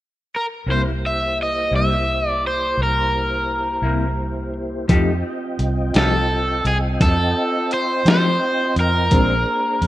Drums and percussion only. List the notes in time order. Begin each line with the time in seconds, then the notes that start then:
4.89 kick, closed hi-hat
5.59 closed hi-hat
5.94 snare, closed hi-hat
6.65 closed hi-hat
7.01 kick, snare, closed hi-hat
7.71 closed hi-hat
8.06 snare, closed hi-hat
8.76 closed hi-hat
9.11 kick, closed hi-hat
9.82 closed hi-hat